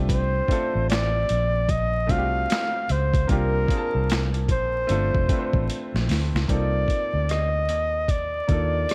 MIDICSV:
0, 0, Header, 1, 5, 480
1, 0, Start_track
1, 0, Tempo, 800000
1, 53, Time_signature, 4, 2, 24, 8
1, 5368, End_track
2, 0, Start_track
2, 0, Title_t, "Flugelhorn"
2, 0, Program_c, 0, 56
2, 58, Note_on_c, 0, 72, 95
2, 511, Note_off_c, 0, 72, 0
2, 540, Note_on_c, 0, 74, 103
2, 1025, Note_on_c, 0, 75, 101
2, 1034, Note_off_c, 0, 74, 0
2, 1266, Note_on_c, 0, 77, 106
2, 1275, Note_off_c, 0, 75, 0
2, 1749, Note_on_c, 0, 72, 91
2, 1758, Note_off_c, 0, 77, 0
2, 1981, Note_off_c, 0, 72, 0
2, 1985, Note_on_c, 0, 70, 104
2, 2531, Note_off_c, 0, 70, 0
2, 2706, Note_on_c, 0, 72, 94
2, 3635, Note_off_c, 0, 72, 0
2, 3902, Note_on_c, 0, 74, 100
2, 4384, Note_on_c, 0, 75, 106
2, 4393, Note_off_c, 0, 74, 0
2, 4864, Note_on_c, 0, 74, 95
2, 4873, Note_off_c, 0, 75, 0
2, 5368, Note_off_c, 0, 74, 0
2, 5368, End_track
3, 0, Start_track
3, 0, Title_t, "Grand piano"
3, 0, Program_c, 1, 0
3, 0, Control_c, 1, 64, 127
3, 0, Note_on_c, 1, 57, 81
3, 0, Note_on_c, 1, 60, 70
3, 0, Note_on_c, 1, 62, 84
3, 0, Note_on_c, 1, 65, 78
3, 0, Note_on_c, 1, 67, 87
3, 246, Note_off_c, 1, 57, 0
3, 249, Note_off_c, 1, 60, 0
3, 255, Note_off_c, 1, 65, 0
3, 259, Note_off_c, 1, 67, 0
3, 271, Note_off_c, 1, 62, 0
3, 286, Note_on_c, 1, 57, 73
3, 292, Note_on_c, 1, 60, 64
3, 297, Note_on_c, 1, 62, 65
3, 304, Note_on_c, 1, 65, 67
3, 314, Note_on_c, 1, 69, 81
3, 1161, Note_off_c, 1, 57, 0
3, 1164, Note_off_c, 1, 60, 0
3, 1167, Note_off_c, 1, 62, 0
3, 1170, Note_off_c, 1, 65, 0
3, 1175, Note_off_c, 1, 69, 0
3, 1241, Note_on_c, 1, 57, 72
3, 1249, Note_on_c, 1, 60, 68
3, 1257, Note_on_c, 1, 62, 60
3, 1262, Note_on_c, 1, 65, 64
3, 1270, Note_on_c, 1, 66, 66
3, 1309, Note_on_c, 1, 67, 79
3, 1310, Note_off_c, 1, 66, 0
3, 1901, Note_off_c, 1, 57, 0
3, 1905, Note_off_c, 1, 60, 0
3, 1909, Note_off_c, 1, 62, 0
3, 1911, Note_off_c, 1, 65, 0
3, 1935, Note_off_c, 1, 67, 0
3, 1963, Note_on_c, 1, 58, 73
3, 1971, Note_on_c, 1, 60, 70
3, 1978, Note_on_c, 1, 62, 69
3, 1981, Control_c, 1, 64, 0
3, 1983, Note_on_c, 1, 65, 69
3, 1991, Note_on_c, 1, 67, 81
3, 2097, Control_c, 1, 64, 127
3, 2186, Note_off_c, 1, 58, 0
3, 2190, Note_off_c, 1, 60, 0
3, 2194, Note_off_c, 1, 62, 0
3, 2196, Note_off_c, 1, 65, 0
3, 2198, Note_on_c, 1, 58, 68
3, 2200, Note_off_c, 1, 67, 0
3, 2206, Note_on_c, 1, 60, 62
3, 2213, Note_on_c, 1, 62, 67
3, 2221, Note_on_c, 1, 65, 60
3, 2226, Note_on_c, 1, 68, 60
3, 2265, Note_on_c, 1, 81, 74
3, 2267, Note_off_c, 1, 68, 0
3, 2921, Note_off_c, 1, 60, 0
3, 2922, Note_on_c, 1, 57, 76
3, 2926, Note_off_c, 1, 58, 0
3, 2927, Note_off_c, 1, 62, 0
3, 2930, Note_on_c, 1, 60, 62
3, 2935, Note_off_c, 1, 65, 0
3, 2936, Note_on_c, 1, 62, 66
3, 2941, Control_c, 1, 64, 0
3, 2944, Note_on_c, 1, 65, 62
3, 2948, Note_on_c, 1, 69, 82
3, 2959, Note_off_c, 1, 81, 0
3, 3055, Control_c, 1, 64, 127
3, 3146, Note_off_c, 1, 57, 0
3, 3150, Note_off_c, 1, 60, 0
3, 3153, Note_off_c, 1, 62, 0
3, 3156, Note_off_c, 1, 65, 0
3, 3159, Note_off_c, 1, 69, 0
3, 3170, Note_on_c, 1, 57, 67
3, 3175, Note_on_c, 1, 60, 68
3, 3182, Note_on_c, 1, 62, 63
3, 3188, Note_on_c, 1, 65, 57
3, 3196, Note_on_c, 1, 71, 59
3, 3232, Note_off_c, 1, 71, 0
3, 3235, Note_on_c, 1, 72, 76
3, 3825, Note_off_c, 1, 57, 0
3, 3828, Note_off_c, 1, 60, 0
3, 3831, Note_off_c, 1, 62, 0
3, 3834, Note_off_c, 1, 65, 0
3, 3858, Note_off_c, 1, 72, 0
3, 3888, Note_on_c, 1, 58, 66
3, 3896, Note_on_c, 1, 60, 60
3, 3901, Control_c, 1, 64, 0
3, 3902, Note_on_c, 1, 63, 60
3, 3909, Note_on_c, 1, 65, 58
3, 3914, Note_on_c, 1, 69, 68
3, 3997, Control_c, 1, 64, 127
3, 4762, Note_off_c, 1, 58, 0
3, 4766, Note_off_c, 1, 60, 0
3, 4769, Note_off_c, 1, 63, 0
3, 4773, Note_off_c, 1, 65, 0
3, 4775, Note_off_c, 1, 69, 0
3, 5084, Note_on_c, 1, 58, 67
3, 5088, Note_on_c, 1, 62, 54
3, 5097, Note_on_c, 1, 63, 52
3, 5102, Note_on_c, 1, 65, 59
3, 5111, Note_on_c, 1, 69, 70
3, 5368, Note_off_c, 1, 58, 0
3, 5368, Note_off_c, 1, 62, 0
3, 5368, Note_off_c, 1, 63, 0
3, 5368, Note_off_c, 1, 65, 0
3, 5368, Note_off_c, 1, 69, 0
3, 5368, End_track
4, 0, Start_track
4, 0, Title_t, "Fingered electric bass"
4, 0, Program_c, 2, 33
4, 0, Note_on_c, 2, 36, 107
4, 242, Note_off_c, 2, 36, 0
4, 451, Note_on_c, 2, 33, 86
4, 740, Note_off_c, 2, 33, 0
4, 783, Note_on_c, 2, 34, 100
4, 1260, Note_off_c, 2, 34, 0
4, 1260, Note_on_c, 2, 36, 90
4, 1469, Note_off_c, 2, 36, 0
4, 1739, Note_on_c, 2, 37, 99
4, 1948, Note_off_c, 2, 37, 0
4, 1978, Note_on_c, 2, 36, 94
4, 2187, Note_off_c, 2, 36, 0
4, 2368, Note_on_c, 2, 36, 82
4, 2694, Note_off_c, 2, 36, 0
4, 2694, Note_on_c, 2, 34, 100
4, 2905, Note_off_c, 2, 34, 0
4, 2938, Note_on_c, 2, 31, 91
4, 3066, Note_off_c, 2, 31, 0
4, 3090, Note_on_c, 2, 29, 88
4, 3168, Note_off_c, 2, 29, 0
4, 3324, Note_on_c, 2, 33, 83
4, 3404, Note_off_c, 2, 33, 0
4, 3566, Note_on_c, 2, 34, 80
4, 3645, Note_off_c, 2, 34, 0
4, 3654, Note_on_c, 2, 38, 95
4, 3784, Note_off_c, 2, 38, 0
4, 3803, Note_on_c, 2, 37, 85
4, 3884, Note_off_c, 2, 37, 0
4, 3896, Note_on_c, 2, 36, 84
4, 4106, Note_off_c, 2, 36, 0
4, 4282, Note_on_c, 2, 38, 78
4, 4618, Note_off_c, 2, 38, 0
4, 4618, Note_on_c, 2, 39, 86
4, 5039, Note_off_c, 2, 39, 0
4, 5097, Note_on_c, 2, 39, 69
4, 5307, Note_off_c, 2, 39, 0
4, 5368, End_track
5, 0, Start_track
5, 0, Title_t, "Drums"
5, 54, Note_on_c, 9, 36, 97
5, 58, Note_on_c, 9, 42, 80
5, 114, Note_off_c, 9, 36, 0
5, 118, Note_off_c, 9, 42, 0
5, 290, Note_on_c, 9, 36, 78
5, 305, Note_on_c, 9, 42, 59
5, 350, Note_off_c, 9, 36, 0
5, 365, Note_off_c, 9, 42, 0
5, 538, Note_on_c, 9, 42, 78
5, 551, Note_on_c, 9, 38, 107
5, 554, Note_on_c, 9, 39, 85
5, 598, Note_off_c, 9, 42, 0
5, 611, Note_off_c, 9, 38, 0
5, 614, Note_off_c, 9, 39, 0
5, 774, Note_on_c, 9, 42, 63
5, 834, Note_off_c, 9, 42, 0
5, 1013, Note_on_c, 9, 36, 90
5, 1015, Note_on_c, 9, 42, 71
5, 1073, Note_off_c, 9, 36, 0
5, 1075, Note_off_c, 9, 42, 0
5, 1255, Note_on_c, 9, 36, 91
5, 1256, Note_on_c, 9, 42, 66
5, 1316, Note_off_c, 9, 36, 0
5, 1316, Note_off_c, 9, 42, 0
5, 1499, Note_on_c, 9, 42, 87
5, 1512, Note_on_c, 9, 38, 109
5, 1515, Note_on_c, 9, 39, 85
5, 1559, Note_off_c, 9, 42, 0
5, 1572, Note_off_c, 9, 38, 0
5, 1575, Note_off_c, 9, 39, 0
5, 1735, Note_on_c, 9, 42, 66
5, 1795, Note_off_c, 9, 42, 0
5, 1881, Note_on_c, 9, 36, 96
5, 1887, Note_on_c, 9, 42, 45
5, 1941, Note_off_c, 9, 36, 0
5, 1947, Note_off_c, 9, 42, 0
5, 1974, Note_on_c, 9, 42, 74
5, 1975, Note_on_c, 9, 36, 99
5, 2034, Note_off_c, 9, 42, 0
5, 2035, Note_off_c, 9, 36, 0
5, 2211, Note_on_c, 9, 36, 85
5, 2223, Note_on_c, 9, 42, 57
5, 2271, Note_off_c, 9, 36, 0
5, 2283, Note_off_c, 9, 42, 0
5, 2458, Note_on_c, 9, 42, 78
5, 2470, Note_on_c, 9, 38, 101
5, 2473, Note_on_c, 9, 39, 87
5, 2518, Note_off_c, 9, 42, 0
5, 2530, Note_off_c, 9, 38, 0
5, 2533, Note_off_c, 9, 39, 0
5, 2605, Note_on_c, 9, 42, 38
5, 2665, Note_off_c, 9, 42, 0
5, 2691, Note_on_c, 9, 36, 100
5, 2693, Note_on_c, 9, 42, 72
5, 2751, Note_off_c, 9, 36, 0
5, 2753, Note_off_c, 9, 42, 0
5, 2933, Note_on_c, 9, 42, 65
5, 2993, Note_off_c, 9, 42, 0
5, 3088, Note_on_c, 9, 36, 91
5, 3148, Note_off_c, 9, 36, 0
5, 3175, Note_on_c, 9, 36, 105
5, 3175, Note_on_c, 9, 42, 66
5, 3235, Note_off_c, 9, 36, 0
5, 3235, Note_off_c, 9, 42, 0
5, 3321, Note_on_c, 9, 36, 98
5, 3381, Note_off_c, 9, 36, 0
5, 3418, Note_on_c, 9, 42, 74
5, 3478, Note_off_c, 9, 42, 0
5, 3575, Note_on_c, 9, 38, 64
5, 3635, Note_off_c, 9, 38, 0
5, 3655, Note_on_c, 9, 46, 51
5, 3668, Note_on_c, 9, 38, 82
5, 3715, Note_off_c, 9, 46, 0
5, 3728, Note_off_c, 9, 38, 0
5, 3816, Note_on_c, 9, 38, 93
5, 3876, Note_off_c, 9, 38, 0
5, 3893, Note_on_c, 9, 36, 87
5, 3895, Note_on_c, 9, 42, 76
5, 3953, Note_off_c, 9, 36, 0
5, 3955, Note_off_c, 9, 42, 0
5, 4128, Note_on_c, 9, 36, 70
5, 4139, Note_on_c, 9, 42, 52
5, 4188, Note_off_c, 9, 36, 0
5, 4199, Note_off_c, 9, 42, 0
5, 4376, Note_on_c, 9, 42, 74
5, 4388, Note_on_c, 9, 37, 99
5, 4436, Note_off_c, 9, 42, 0
5, 4448, Note_off_c, 9, 37, 0
5, 4613, Note_on_c, 9, 42, 58
5, 4673, Note_off_c, 9, 42, 0
5, 4850, Note_on_c, 9, 36, 74
5, 4853, Note_on_c, 9, 42, 61
5, 4910, Note_off_c, 9, 36, 0
5, 4913, Note_off_c, 9, 42, 0
5, 5092, Note_on_c, 9, 36, 90
5, 5092, Note_on_c, 9, 42, 57
5, 5152, Note_off_c, 9, 36, 0
5, 5152, Note_off_c, 9, 42, 0
5, 5335, Note_on_c, 9, 42, 71
5, 5348, Note_on_c, 9, 37, 107
5, 5368, Note_off_c, 9, 37, 0
5, 5368, Note_off_c, 9, 42, 0
5, 5368, End_track
0, 0, End_of_file